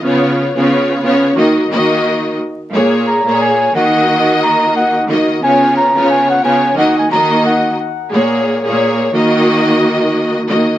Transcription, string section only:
X:1
M:4/4
L:1/16
Q:"Swing 16ths" 1/4=89
K:Ebm
V:1 name="String section"
[D,CFd]3 [D,CFd]3 [D,CFd]2 [E,B,Ge] z [E,B,Ge]4 z2 | [B,,B,Ad]3 [B,,B,Ad]3 [E,B,Ge]6- [E,B,Ge] z [E,B,Ge]2 | [D,CFd]3 [D,CFd]3 [D,CFd]2 [E,B,Ge] z [E,B,Ge]4 z2 | [B,,B,Ad]3 [B,,B,Ad]3 [E,B,Ge]6- [E,B,Ge] z [E,B,Ge]2 |]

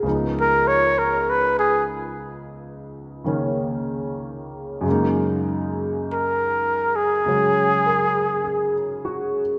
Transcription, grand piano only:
X:1
M:4/4
L:1/16
Q:"Swing" 1/4=50
K:Db
V:1 name="Grand piano"
B z12 z3 | z8 z2 B2 A2 G2 |]
V:2 name="Grand piano" clef=bass
[D,,D,F,_CE]8- [D,,D,F,CE]2 [D,E,B,D]6 | [G,,D,A,B,E]8 [D,G,A,D]8 |]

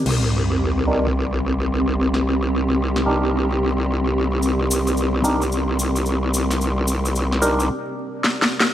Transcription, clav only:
X:1
M:4/4
L:1/8
Q:"Swing 16ths" 1/4=110
K:Cm
V:1 name="Clav"
z3 [DEGB] z4 | z3 [DEGB]4- [DEGB]- | [DEGB]3 [DEGB] z4 | z3 [DEGB] z4 |]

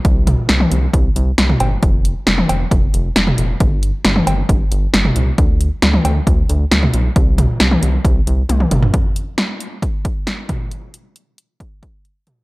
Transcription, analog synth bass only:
X:1
M:4/4
L:1/8
Q:1/4=135
K:C
V:1 name="Analog synth bass" clef=bass
C,,2 C,, C,, C,, C,, C,, G,,, | F,,,2 F,,, F,,, F,,, F,,, F,,, F,,, | G,,,2 G,,, G,,, G,,, G,,, G,,, C,, | D,,2 D,, D,, D,, D,, D,, B,,, |
C,,2 C,, C,, C,, C,, C,, G,,, | z8 | z8 |]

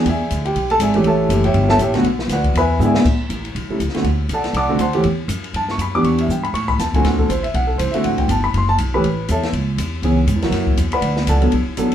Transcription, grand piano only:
X:1
M:4/4
L:1/16
Q:"Swing" 1/4=240
K:Amix
V:1 name="Grand piano"
[^Gde=g^g]6 [=G=g]4 [Aa]2 [^Gde^g]2 z2 | [Acea]6 [Gceg]4 [Acea]2 [Gceg]2 z2 | z4 [FBdf]4 [Be^gb]4 [^Gde=g^g]4 | z16 |
z4 [Adfa]4 [dfad']4 [=cfa=c']3 z | z8 a2 c'2 b2 d'2 | c'2 e2 g2 b2 c'2 b2 a2 ^g2 | f2 A2 =c2 e2 f2 A2 c2 e2 |
f2 g2 a2 b2 =c'2 a2 z2 [Bb]2- | [Bb]4 [Acea]2 z8 z2 | z12 z2 [Bdfb]2- | [Bdfb]4 [Adfa]2 z8 z2 |]
V:2 name="Grand piano"
z12 z2 [E,A,CG]2- | [E,A,CG]4 [E,A,CG]2 z8 [D,A,B,F]2 | z12 [D,^G,B,E]4 | z8 z2 [C,G,A,E]2 z2 [D,A,=CF]2 |
z8 z2 [D,A,=CF]2 z2 [E,A,^CG]2 | z12 z2 [E,B,DG]2- | [E,B,DG]4 z8 z2 [D,A,=CF]2- | [D,A,=CF]4 z8 z2 [D,A,CF]2- |
[D,A,=CF]4 z8 z2 [E,A,^CG]2 | z16 | [E,B,C^G]2 z4 [F,_B,EF]6 z4 | z6 [F,B,DA]2 z4 [F,B,DA]2 z2 |]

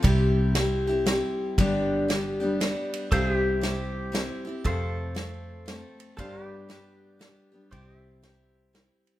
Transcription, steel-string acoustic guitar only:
X:1
M:3/4
L:1/8
Q:"Swing" 1/4=117
K:C
V:1 name="Steel-string acoustic guitar"
[C,G,CEG]2 [G,CEG] [CEG] [G,CEG]2 | [G,,D,G,B,DG]2 [G,B,DG] [G,B,DG] [G,B,DG]2 | [C,G,CEG]2 [G,CEG]2 [G,CEG] [CEG] | [F,,C,F,A,CA]2 [F,A,CA]2 [F,A,CA]2 |
[G,,D,G,B,DG]2 [G,B,DG]2 [G,B,DG] [G,B,DG] | [C,G,CEG]2 [G,CEG]2 [G,CEG]2 |]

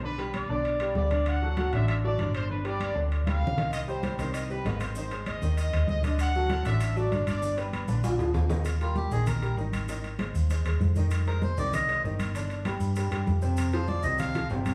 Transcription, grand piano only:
X:1
M:4/4
L:1/8
Q:1/4=195
K:Gphr
V:1 name="Grand piano"
[D,Dd] [G,G=B]2 [D,Dd]2 [G,GB]2 [D,Dd]- | [D,Dd] [^F,^F=A] [F,FA] [D,Dd]2 [F,FA] [D,Dd]2 | [D,Dd] [G,G=B]2 [D,Dd]2 [G,GB]2 [E,Ee]- | [E,Ee] [G,Gc] [G,Gc] [E,Ee]2 [G,Gc] [E,Ee]2 |
[E,Ee] [A,Ac]2 [E,Ee]2 [A,Ac]2 [D,Dd]- | [D,Dd] [^F,^F=A] [F,FA] [D,Dd]2 [F,FA] [D,Dd]2 | [D,Dd] [G,G=B]2 [D,Dd]2 [F,FA]2 [E,Ee] | [K:Eb] z [G,GB]2 [E,Ee]2 [G,GB] [E,Ee]2 |
[E,Ee]2 [A,Ac]2 [A,Ac] [A,Ac]2 [E,Ee]- | [E,Ee] [A,Ac]2 [E,Ee]2 [A,Ac] [E,Ee]2 | [D,Dd]2 [G,G=B]2 [G,GB] [G,GB]2 [C,Cc]- | [C,Cc] [F,FA]2 [C,Cc]2 [F,FA] [C,Cc]2 |]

